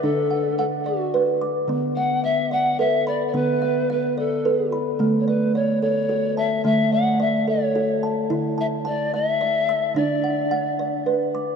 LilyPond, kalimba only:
<<
  \new Staff \with { instrumentName = "Kalimba" } { \time 6/8 \key d \major \tempo 4. = 73 << { <d'' d'''>8 fis''4 d''8 d''8 d'''8~ | d'''8 e''4 d''8 b'8 b''8~ | b''8 e''4 d''8 b'8 b''8~ | b''8 d''4 a'8 a'8 a''8~ |
a''8 d''4 a'8 a'8 a''8~ | a''8 a''4 e''8 e''8 e'''8~ | e'''8 fis''4 d''8 d''8 d'''8 | } \\ { d'4 fis''4 b'4 | b4 e''4 a'4 | b4 e''4 a'4 | a4 d''4 fis'4 |
a4 d''4 fis'4 | e'4 a''4 d''4 | d'4 fis''4 b'4 | } >> }
  \new Staff \with { instrumentName = "Kalimba" } { \clef bass \time 6/8 \key d \major d2. | d2. | d2. | d2. |
d2. | d2. | d2. | }
>>